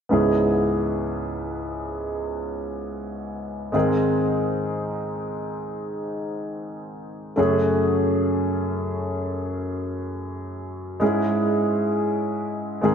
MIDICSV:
0, 0, Header, 1, 2, 480
1, 0, Start_track
1, 0, Key_signature, 4, "minor"
1, 0, Tempo, 500000
1, 12428, End_track
2, 0, Start_track
2, 0, Title_t, "Grand piano"
2, 0, Program_c, 0, 0
2, 89, Note_on_c, 0, 59, 48
2, 99, Note_on_c, 0, 61, 46
2, 103, Note_on_c, 0, 44, 48
2, 104, Note_on_c, 0, 37, 47
2, 111, Note_on_c, 0, 64, 41
2, 122, Note_on_c, 0, 68, 54
2, 285, Control_c, 0, 64, 127
2, 3548, Note_off_c, 0, 59, 0
2, 3553, Note_off_c, 0, 61, 0
2, 3555, Note_off_c, 0, 37, 0
2, 3555, Note_off_c, 0, 44, 0
2, 3559, Note_off_c, 0, 64, 0
2, 3564, Note_off_c, 0, 68, 0
2, 3573, Note_on_c, 0, 56, 50
2, 3582, Note_on_c, 0, 60, 46
2, 3588, Note_on_c, 0, 44, 51
2, 3588, Note_on_c, 0, 51, 49
2, 3595, Note_on_c, 0, 63, 43
2, 3606, Control_c, 0, 64, 0
2, 3606, Note_on_c, 0, 68, 56
2, 3744, Control_c, 0, 64, 127
2, 7035, Note_off_c, 0, 56, 0
2, 7040, Note_off_c, 0, 60, 0
2, 7043, Note_off_c, 0, 44, 0
2, 7043, Note_off_c, 0, 51, 0
2, 7046, Note_off_c, 0, 63, 0
2, 7052, Note_off_c, 0, 68, 0
2, 7064, Note_on_c, 0, 57, 53
2, 7075, Note_on_c, 0, 61, 48
2, 7080, Note_on_c, 0, 42, 50
2, 7080, Note_on_c, 0, 49, 50
2, 7086, Note_on_c, 0, 66, 50
2, 7097, Control_c, 0, 64, 0
2, 7097, Note_on_c, 0, 68, 60
2, 7259, Control_c, 0, 64, 127
2, 10526, Note_off_c, 0, 57, 0
2, 10532, Note_off_c, 0, 61, 0
2, 10534, Note_off_c, 0, 42, 0
2, 10534, Note_off_c, 0, 49, 0
2, 10537, Note_off_c, 0, 66, 0
2, 10543, Note_off_c, 0, 68, 0
2, 10558, Note_on_c, 0, 56, 57
2, 10570, Note_on_c, 0, 61, 47
2, 10576, Note_on_c, 0, 44, 51
2, 10580, Note_on_c, 0, 64, 49
2, 10587, Control_c, 0, 64, 0
2, 10592, Note_on_c, 0, 68, 62
2, 10747, Control_c, 0, 64, 127
2, 12276, Note_off_c, 0, 56, 0
2, 12282, Note_off_c, 0, 44, 0
2, 12283, Note_off_c, 0, 61, 0
2, 12288, Note_off_c, 0, 64, 0
2, 12294, Note_off_c, 0, 68, 0
2, 12303, Note_on_c, 0, 56, 56
2, 12315, Note_on_c, 0, 60, 51
2, 12320, Note_on_c, 0, 51, 58
2, 12321, Note_on_c, 0, 44, 55
2, 12327, Note_on_c, 0, 63, 52
2, 12333, Control_c, 0, 64, 0
2, 12337, Note_on_c, 0, 68, 61
2, 12428, Note_off_c, 0, 44, 0
2, 12428, Note_off_c, 0, 51, 0
2, 12428, Note_off_c, 0, 56, 0
2, 12428, Note_off_c, 0, 60, 0
2, 12428, Note_off_c, 0, 63, 0
2, 12428, Note_off_c, 0, 68, 0
2, 12428, End_track
0, 0, End_of_file